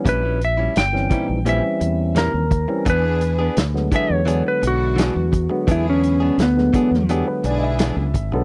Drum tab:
HH |x-x-x-x-x-x-x-x-|x-x-x-x-x-x-x-x-|x-x-x-x-x-x-x-x-|
SD |----oo------o---|----oo------o---|----oo-o----o---|
BD |o-----o-------o-|o-----o-------o-|o-----o-------o-|